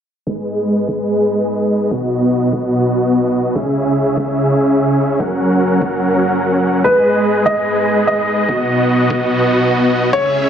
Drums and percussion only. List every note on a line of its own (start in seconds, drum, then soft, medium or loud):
0.27 kick loud
0.88 kick loud
1.91 kick loud
2.53 kick loud
3.55 kick loud
4.17 kick loud
5.20 kick loud
5.82 kick loud
6.84 kick loud
7.46 kick loud
8.49 kick loud
9.10 kick loud
10.13 kick loud